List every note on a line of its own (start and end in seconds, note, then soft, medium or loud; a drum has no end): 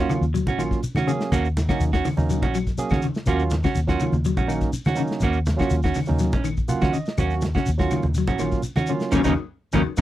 0.00 0.24 F#3 medium
0.00 0.24 A#3 medium
0.00 0.13 C#4 soft
0.00 0.24 C#4 medium
0.00 0.24 F4 medium
0.00 0.13 F#4 medium
0.00 shekere soft
0.09 0.26 D#3 medium
0.09 closed hi-hat soft
0.09 high conga medium
0.09 claves medium
0.09 shekere medium
0.21 0.46 D#2 medium
0.21 closed hi-hat soft
0.21 shekere soft
0.34 0.51 F#3 medium
0.34 closed hi-hat medium
0.34 shekere medium
0.46 0.84 A#1 medium
0.46 0.62 C#4 soft
0.46 0.62 F#4 medium
0.46 kick medium
0.46 closed hi-hat soft
0.46 high conga medium
0.46 shekere soft
0.58 0.75 D#3 medium
0.58 0.79 F#3 medium
0.58 0.79 A#3 medium
0.58 0.79 C#4 medium
0.58 0.80 F4 medium
0.58 snare soft
0.58 closed hi-hat soft
0.58 claves medium
0.58 shekere medium
0.71 kick medium
0.71 snare soft
0.71 closed hi-hat soft
0.71 shekere soft
0.83 closed hi-hat medium
0.83 shekere medium
0.95 1.14 D#3 medium
0.95 1.11 C#4 soft
0.95 1.10 F#4 medium
0.95 snare medium
0.95 closed hi-hat soft
0.95 high conga medium
0.95 claves medium
0.95 shekere soft
1.07 1.24 C#3 medium
1.07 1.33 F#3 medium
1.07 1.34 A#3 medium
1.07 1.33 C#4 medium
1.07 1.34 G#4 loud
1.07 closed hi-hat soft
1.07 shekere medium
1.20 snare medium
1.20 closed hi-hat soft
1.20 shekere soft
1.32 1.70 D#2 loud
1.32 1.47 A#3 medium
1.32 1.47 C#4 medium
1.32 1.47 F#4 medium
1.32 kick medium
1.32 closed hi-hat medium
1.32 low conga medium
1.32 claves medium
1.32 shekere medium
1.45 closed hi-hat soft
1.45 shekere soft
1.57 snare medium
1.57 closed hi-hat medium
1.57 high conga medium
1.57 low conga medium
1.57 shekere medium
1.69 1.86 C#3 medium
1.69 1.90 F#3 medium
1.69 1.90 A#3 medium
1.69 1.90 C#4 medium
1.69 1.84 C#4 soft
1.69 1.90 D#4 medium
1.69 1.83 F#4 medium
1.69 kick medium
1.69 snare medium
1.69 closed hi-hat soft
1.69 claves medium
1.69 shekere soft
1.80 1.99 D#2 medium
1.80 closed hi-hat medium
1.80 shekere medium
1.93 2.02 D#3 medium
1.93 2.08 C#4 soft
1.93 2.08 F#4 medium
1.93 kick medium
1.93 snare medium
1.93 closed hi-hat soft
1.93 shekere soft
2.05 2.22 D#3 medium
2.05 open hi-hat medium
2.05 high conga medium
2.05 claves medium
2.05 shekere medium
2.17 2.42 D#2 medium
2.17 2.43 F#3 medium
2.17 2.44 A#3 medium
2.17 2.43 C#4 medium
2.17 2.44 D#4 medium
2.17 snare soft
2.17 high conga medium
2.17 shekere soft
2.30 2.47 F#3 medium
2.30 closed hi-hat medium
2.30 shekere medium
2.42 2.80 A#1 medium
2.42 2.58 C#4 soft
2.42 2.57 F#4 soft
2.42 kick medium
2.42 closed hi-hat soft
2.42 high conga medium
2.42 shekere soft
2.55 2.71 F#3 medium
2.55 closed hi-hat soft
2.55 claves medium
2.55 shekere medium
2.67 kick medium
2.67 snare soft
2.67 closed hi-hat soft
2.67 shekere soft
2.78 2.99 F#3 medium
2.78 2.99 A#3 medium
2.78 3.00 C#4 medium
2.78 3.00 G#4 medium
2.78 closed hi-hat medium
2.78 shekere medium
2.89 3.10 D#3 medium
2.89 3.06 C#4 soft
2.89 3.05 F#4 medium
2.89 kick medium
2.89 snare medium
2.89 high conga medium
2.89 claves medium
2.89 shekere soft
3.02 3.20 C#3 medium
3.02 closed hi-hat medium
3.02 high conga medium
3.02 shekere medium
3.14 snare medium
3.14 closed hi-hat soft
3.14 shekere soft
3.26 3.65 D#2 loud
3.26 3.53 F#3 medium
3.26 3.53 A#3 medium
3.26 3.42 A#3 medium
3.26 3.54 C#4 medium
3.26 3.43 C#4 medium
3.26 3.54 F4 medium
3.26 3.43 F#4 medium
3.26 kick medium
3.26 closed hi-hat medium
3.26 low conga medium
3.26 claves medium
3.26 shekere medium
3.39 closed hi-hat soft
3.39 shekere soft
3.50 snare medium
3.50 closed hi-hat medium
3.50 high conga medium
3.50 low conga medium
3.50 shekere medium
3.63 3.81 C#3 medium
3.63 3.79 C#4 soft
3.63 3.79 F#4 soft
3.63 kick medium
3.63 snare medium
3.63 closed hi-hat soft
3.63 claves medium
3.63 shekere soft
3.75 3.95 D#2 medium
3.75 snare soft
3.75 closed hi-hat medium
3.75 shekere medium
3.87 3.97 D#3 medium
3.87 4.14 F#3 medium
3.87 4.14 A#3 medium
3.87 4.14 C#4 medium
3.87 4.04 C#4 soft
3.87 4.15 F4 medium
3.87 4.03 F#4 medium
3.87 kick medium
3.87 snare medium
3.87 closed hi-hat soft
3.87 shekere soft
4.00 4.18 D#3 medium
4.00 closed hi-hat soft
4.00 high conga medium
4.00 claves medium
4.00 shekere medium
4.12 4.37 D#2 medium
4.12 closed hi-hat soft
4.12 high conga medium
4.12 shekere soft
4.25 4.42 F#3 medium
4.25 closed hi-hat medium
4.25 shekere medium
4.37 4.75 A#1 medium
4.37 4.53 C#4 soft
4.37 4.52 F#4 medium
4.37 kick medium
4.37 closed hi-hat soft
4.37 high conga medium
4.37 shekere soft
4.48 4.66 D#3 medium
4.48 4.70 F#3 medium
4.48 4.70 A#3 medium
4.48 4.70 C#4 medium
4.48 4.70 D#4 medium
4.48 closed hi-hat soft
4.48 claves medium
4.48 shekere medium
4.61 kick medium
4.61 snare soft
4.61 closed hi-hat soft
4.61 shekere soft
4.73 closed hi-hat medium
4.73 shekere medium
4.84 5.05 D#3 medium
4.84 5.02 C#4 soft
4.84 5.01 F#4 medium
4.84 snare medium
4.84 closed hi-hat soft
4.84 high conga medium
4.84 claves medium
4.84 shekere soft
4.95 5.15 C#3 medium
4.95 5.23 F#3 medium
4.95 5.23 A#3 medium
4.95 5.24 C#4 medium
4.95 5.24 D#4 loud
4.95 closed hi-hat medium
4.95 shekere medium
5.07 snare medium
5.07 closed hi-hat soft
5.07 shekere soft
5.20 5.60 D#2 loud
5.20 5.38 A#3 medium
5.20 5.38 C#4 medium
5.20 kick medium
5.20 closed hi-hat medium
5.20 low conga medium
5.20 claves medium
5.20 shekere medium
5.24 5.38 F#4 medium
5.33 closed hi-hat soft
5.33 shekere soft
5.46 snare medium
5.46 closed hi-hat medium
5.46 high conga medium
5.46 low conga medium
5.46 shekere medium
5.56 5.79 F#3 medium
5.56 5.79 A#3 medium
5.56 5.79 C#4 medium
5.56 5.80 F4 medium
5.56 5.74 F#4 soft
5.56 kick medium
5.56 shekere soft
5.60 5.77 C#3 medium
5.60 5.75 C#4 soft
5.60 snare medium
5.60 closed hi-hat soft
5.60 claves medium
5.70 5.90 D#2 medium
5.70 closed hi-hat medium
5.70 shekere medium
5.82 5.93 D#3 medium
5.82 5.99 C#4 soft
5.82 5.98 F#4 medium
5.82 kick medium
5.82 snare medium
5.82 closed hi-hat soft
5.82 shekere soft
5.94 6.13 D#3 medium
5.94 snare soft
5.94 open hi-hat medium
5.94 high conga medium
5.94 claves medium
5.94 shekere medium
6.06 6.34 F#3 medium
6.06 6.34 A#3 medium
6.06 6.34 C#4 medium
6.06 6.35 D#4 medium
6.06 high conga medium
6.06 shekere soft
6.10 6.34 D#2 medium
6.19 6.37 F#3 medium
6.19 snare soft
6.19 closed hi-hat medium
6.19 shekere medium
6.32 6.71 A#1 medium
6.32 6.48 C#4 soft
6.32 kick medium
6.32 closed hi-hat soft
6.32 high conga medium
6.32 shekere soft
6.44 6.61 D#3 medium
6.44 closed hi-hat soft
6.44 claves medium
6.44 shekere medium
6.57 kick medium
6.57 closed hi-hat soft
6.57 shekere soft
6.68 6.90 F#3 medium
6.68 6.90 A#3 medium
6.68 6.90 C#4 medium
6.68 6.90 F4 medium
6.68 6.92 F#5 medium
6.68 closed hi-hat medium
6.68 high conga medium
6.68 shekere medium
6.81 7.01 D#3 medium
6.81 6.97 C#4 soft
6.81 6.96 F#4 medium
6.81 kick medium
6.81 snare medium
6.81 high conga medium
6.81 claves medium
6.81 shekere soft
6.93 7.11 C#3 medium
6.93 7.16 D#5 medium
6.93 closed hi-hat soft
6.93 shekere medium
7.06 snare medium
7.06 closed hi-hat soft
7.06 shekere soft
7.18 7.56 D#2 loud
7.18 7.44 F#3 medium
7.18 7.44 A#3 medium
7.18 7.44 C#4 medium
7.18 7.34 C#4 medium
7.18 7.45 F#4 loud
7.18 7.34 F#4 medium
7.18 muted clean electric guitar stroke medium
7.18 kick medium
7.18 closed hi-hat medium
7.18 low conga medium
7.18 claves medium
7.18 shekere medium
7.30 snare soft
7.30 closed hi-hat soft
7.30 shekere soft
7.41 snare medium
7.41 closed hi-hat medium
7.41 high conga medium
7.41 low conga medium
7.41 shekere medium
7.54 7.72 C#3 medium
7.54 7.70 C#4 soft
7.54 7.69 F#4 medium
7.54 kick medium
7.54 snare medium
7.54 closed hi-hat soft
7.54 claves medium
7.54 shekere soft
7.66 7.87 D#2 medium
7.66 closed hi-hat medium
7.66 shekere medium
7.78 7.89 D#3 medium
7.78 8.05 F#3 medium
7.78 8.05 A#3 medium
7.78 8.05 C#4 medium
7.78 8.06 F4 medium
7.78 7.94 F#4 medium
7.78 muted clean electric guitar stroke medium
7.78 kick medium
7.78 snare medium
7.78 closed hi-hat soft
7.78 shekere soft
7.91 8.09 D#3 medium
7.91 snare soft
7.91 closed hi-hat soft
7.91 high conga medium
7.91 claves medium
7.91 shekere medium
8.03 8.28 D#2 medium
8.03 closed hi-hat soft
8.03 high conga medium
8.03 shekere soft
8.14 8.34 F#3 medium
8.14 closed hi-hat medium
8.14 shekere medium
8.27 8.66 A#1 medium
8.27 8.43 C#4 soft
8.27 8.42 F#4 medium
8.27 kick medium
8.27 closed hi-hat soft
8.27 high conga medium
8.27 shekere soft
8.39 8.57 D#3 medium
8.39 8.61 F#3 medium
8.39 8.61 A#3 medium
8.39 8.61 C#4 medium
8.39 8.61 F4 medium
8.39 snare soft
8.39 closed hi-hat soft
8.39 claves medium
8.39 shekere medium
8.51 kick medium
8.51 snare soft
8.51 closed hi-hat soft
8.51 shekere soft
8.63 closed hi-hat medium
8.63 shekere medium
8.76 8.96 D#3 medium
8.76 8.91 C#4 soft
8.76 8.91 F#4 medium
8.76 snare medium
8.76 closed hi-hat soft
8.76 high conga medium
8.76 claves medium
8.76 shekere soft
8.87 9.06 C#3 medium
8.87 9.13 F#3 medium
8.87 9.11 A#3 medium
8.87 9.11 C#4 medium
8.87 9.14 F4 medium
8.87 closed hi-hat soft
8.87 shekere medium
9.00 snare medium
9.00 closed hi-hat soft
9.00 shekere soft
9.12 9.22 D#2 medium
9.12 9.21 C#3 medium
9.12 9.21 D#3 medium
9.12 9.21 F#3 medium
9.12 9.20 A#3 loud
9.12 9.20 A#3 medium
9.12 9.20 C#4 medium
9.12 9.20 C#4 loud
9.12 9.20 D#4 medium
9.12 kick medium
9.12 snare medium
9.12 low conga loud
9.12 claves loud
9.12 shekere medium
9.24 9.34 D#2 medium
9.24 9.33 C#3 medium
9.24 9.33 D#3 medium
9.24 9.33 F#3 medium
9.24 9.33 A#3 medium
9.24 9.33 C#4 medium
9.24 9.32 D#4 medium
9.24 9.33 D#4 medium
9.24 kick medium
9.24 snare medium
9.24 low conga loud
9.24 claves medium
9.24 shekere medium
9.72 9.82 D#2 medium
9.72 9.82 C#3 medium
9.72 9.82 D#3 medium
9.72 9.82 F#3 medium
9.72 9.81 A#3 medium
9.72 9.82 A#3 medium
9.72 9.81 C#4 medium
9.72 9.81 D#4 medium
9.72 kick medium
9.72 snare medium
9.72 low conga medium
9.72 claves medium
9.72 shekere medium
9.97 10.01 A#3 medium
9.97 10.01 C#4 medium
9.97 10.01 D#4 medium
9.97 shekere medium